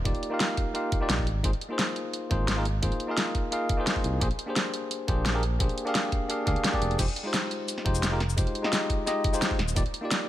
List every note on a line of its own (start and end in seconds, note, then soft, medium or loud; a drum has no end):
0.04 0.14 D#1 medium
0.04 0.29 A#3 medium
0.04 0.29 D#4 medium
0.04 0.30 F4 medium
0.04 0.30 G4 medium
0.04 0.30 D5 medium
0.04 kick loud
0.04 closed hi-hat medium
0.15 closed hi-hat soft
0.23 closed hi-hat medium
0.30 0.72 A#3 medium
0.30 0.72 D#4 medium
0.30 0.73 F4 medium
0.30 0.73 G4 medium
0.30 0.74 F5 medium
0.40 snare loud
0.40 closed hi-hat medium
0.57 kick medium
0.57 closed hi-hat medium
0.74 0.99 A#3 medium
0.74 0.99 D#4 medium
0.74 0.99 F4 medium
0.74 0.99 G4 medium
0.74 1.00 F5 medium
0.74 closed hi-hat medium
0.92 kick loud
0.92 closed hi-hat medium
1.00 1.25 A#3 medium
1.00 1.26 D#4 medium
1.00 1.26 F4 medium
1.00 1.26 G4 medium
1.00 1.26 D5 medium
1.09 1.28 A#1 medium
1.09 snare loud
1.09 closed hi-hat medium
1.19 kick medium
1.27 1.43 G#1 loud
1.27 closed hi-hat medium
1.43 1.52 G#1 medium
1.43 1.49 A#3 medium
1.43 1.49 D#4 medium
1.43 1.50 F4 medium
1.43 1.50 G#4 medium
1.43 1.50 C5 medium
1.43 kick loud
1.43 closed hi-hat medium
1.53 closed hi-hat soft
1.61 closed hi-hat medium
1.69 2.28 A#3 medium
1.69 2.28 D#4 medium
1.69 2.29 F4 medium
1.69 2.29 G#4 medium
1.73 2.30 C5 medium
1.79 snare loud
1.79 closed hi-hat medium
1.96 closed hi-hat medium
2.13 closed hi-hat medium
2.30 2.82 G#1 loud
2.30 2.55 A#3 medium
2.30 2.55 D#4 medium
2.30 2.55 F4 medium
2.30 2.55 G#4 medium
2.30 2.56 C5 medium
2.30 kick loud
2.30 closed hi-hat medium
2.48 snare loud
2.48 closed hi-hat medium
2.56 2.64 A#3 medium
2.56 2.65 D#4 medium
2.56 2.65 F4 medium
2.56 2.65 G#4 medium
2.56 2.65 A#4 medium
2.65 closed hi-hat medium
2.82 2.91 G#1 medium
2.82 3.06 A#3 medium
2.82 3.07 D#4 medium
2.82 3.07 F4 medium
2.82 3.07 G#4 medium
2.82 3.08 C5 medium
2.82 kick loud
2.82 closed hi-hat medium
2.92 closed hi-hat soft
3.00 closed hi-hat medium
3.07 3.49 A#3 medium
3.07 3.50 D#4 medium
3.07 3.50 F4 medium
3.07 3.51 G#4 medium
3.07 3.51 F5 medium
3.17 snare loud
3.17 closed hi-hat medium
3.35 kick medium
3.35 closed hi-hat medium
3.51 3.75 A#3 medium
3.51 3.76 D#4 medium
3.51 3.77 F4 medium
3.51 3.77 G#4 medium
3.51 3.77 F5 medium
3.51 closed hi-hat medium
3.69 kick loud
3.69 closed hi-hat medium
3.77 4.19 A#3 medium
3.77 4.19 D#4 medium
3.77 4.20 F4 medium
3.77 4.20 G#4 medium
3.77 4.21 C5 medium
3.87 snare loud
3.87 closed hi-hat medium
3.96 kick medium
4.04 4.20 C2 medium
4.04 closed hi-hat medium
4.20 4.30 A#1 medium
4.20 4.26 A#3 medium
4.20 4.27 D4 medium
4.20 4.27 G4 medium
4.20 4.27 G#4 medium
4.20 4.27 C5 medium
4.20 kick loud
4.20 closed hi-hat medium
4.31 closed hi-hat soft
4.39 closed hi-hat medium
4.46 5.05 A#3 medium
4.46 5.06 D4 medium
4.46 5.06 G4 medium
4.46 5.07 G#4 medium
4.50 5.07 C5 medium
4.56 snare loud
4.56 closed hi-hat medium
4.74 closed hi-hat medium
4.91 closed hi-hat medium
5.07 5.59 A#1 medium
5.07 5.32 A#3 medium
5.07 5.32 D4 medium
5.07 5.33 G4 medium
5.07 5.33 G#4 medium
5.07 5.33 C5 medium
5.07 kick medium
5.07 closed hi-hat medium
5.26 snare loud
5.26 closed hi-hat loud
5.34 5.42 A#3 medium
5.34 5.42 D4 medium
5.34 5.42 G4 medium
5.34 5.43 G#4 medium
5.34 5.43 A#4 medium
5.43 closed hi-hat medium
5.59 5.69 A#1 medium
5.59 5.84 A#3 medium
5.59 5.84 D4 medium
5.59 5.85 G4 medium
5.59 5.85 G#4 medium
5.59 5.85 C5 medium
5.59 kick loud
5.59 closed hi-hat medium
5.69 closed hi-hat soft
5.78 closed hi-hat medium
5.85 6.27 A#3 medium
5.85 6.27 D4 medium
5.85 6.28 G4 medium
5.85 6.28 G#4 medium
5.85 6.29 F5 medium
5.85 closed hi-hat soft
5.95 snare loud
5.95 closed hi-hat medium
6.12 kick medium
6.12 closed hi-hat medium
6.28 6.45 A#3 medium
6.28 6.45 D4 medium
6.28 6.45 G4 medium
6.28 6.46 G#4 medium
6.28 6.46 F5 medium
6.28 closed hi-hat medium
6.46 6.55 D2 medium
6.46 6.71 A#3 medium
6.46 6.71 D4 medium
6.46 6.71 G4 medium
6.46 6.72 G#4 medium
6.46 6.72 F5 medium
6.46 kick loud
6.46 closed hi-hat medium
6.56 closed hi-hat soft
6.64 snare loud
6.64 closed hi-hat loud
6.72 6.97 A#3 medium
6.72 6.97 D4 medium
6.72 6.97 G4 medium
6.72 6.97 G#4 medium
6.72 6.98 D5 loud
6.72 kick medium
6.82 6.97 F1 medium
6.82 closed hi-hat medium
6.91 closed hi-hat soft
6.98 7.07 F1 medium
6.98 7.04 G#3 medium
6.98 7.04 D#4 medium
6.98 7.04 F4 medium
6.98 7.05 G4 medium
6.98 7.05 C5 medium
6.98 kick loud
6.98 closed hi-hat medium
6.98 crash medium
6.98 cabasa soft
7.08 closed hi-hat soft
7.16 closed hi-hat medium
7.23 7.83 G#3 medium
7.23 7.83 D#4 medium
7.23 7.84 F4 medium
7.23 7.84 G4 medium
7.27 7.85 C5 medium
7.34 snare loud
7.34 closed hi-hat medium
7.34 cabasa soft
7.51 closed hi-hat medium
7.68 closed hi-hat medium
7.68 cabasa soft
7.78 snare soft
7.85 8.36 F1 loud
7.85 8.10 G#3 medium
7.85 8.10 D#4 medium
7.85 8.10 F4 medium
7.85 8.10 G4 medium
7.85 8.11 C5 medium
7.85 kick loud
7.85 closed hi-hat medium
7.95 cabasa medium
8.03 snare loud
8.03 closed hi-hat loud
8.03 cabasa soft
8.11 8.19 G#3 medium
8.11 8.20 D#4 medium
8.11 8.20 F4 medium
8.11 8.20 G4 medium
8.11 8.20 A#4 medium
8.20 snare medium
8.20 closed hi-hat medium
8.30 cabasa medium
8.37 8.46 F1 medium
8.37 8.61 G#3 medium
8.37 8.62 D#4 medium
8.37 8.62 F4 medium
8.37 8.62 G4 medium
8.37 8.63 C5 medium
8.37 kick loud
8.37 closed hi-hat medium
8.37 cabasa soft
8.47 closed hi-hat soft
8.55 closed hi-hat medium
8.62 9.04 G#3 medium
8.62 9.05 D#4 medium
8.62 9.05 F4 medium
8.62 9.06 G4 medium
8.62 snare medium
8.66 9.06 D#5 medium
8.73 snare loud
8.73 closed hi-hat medium
8.73 cabasa soft
8.90 kick medium
8.90 closed hi-hat medium
9.06 9.31 G#3 medium
9.06 9.31 D#4 medium
9.06 9.31 F4 medium
9.06 9.32 G4 medium
9.06 9.32 D#5 medium
9.06 snare soft
9.06 closed hi-hat medium
9.06 cabasa soft
9.24 kick loud
9.24 closed hi-hat medium
9.33 9.58 G#3 medium
9.33 9.58 D#4 medium
9.33 9.58 F4 medium
9.33 9.58 G4 medium
9.33 9.59 C5 medium
9.33 cabasa medium
9.42 snare loud
9.42 closed hi-hat loud
9.42 cabasa soft
9.51 kick medium
9.59 9.75 D#1 medium
9.59 snare medium
9.59 closed hi-hat medium
9.68 cabasa medium
9.75 9.85 D#1 medium
9.75 9.81 A#3 medium
9.75 9.81 D#4 medium
9.75 9.82 F4 medium
9.75 9.82 G4 medium
9.75 9.82 D5 medium
9.75 kick loud
9.75 closed hi-hat medium
9.75 cabasa soft
9.86 closed hi-hat soft
9.94 closed hi-hat medium
10.01 10.29 A#3 medium
10.01 10.29 D#4 medium
10.01 10.29 F4 medium
10.01 10.29 G4 medium
10.05 10.29 D5 medium
10.11 snare loud
10.11 closed hi-hat medium
10.11 cabasa soft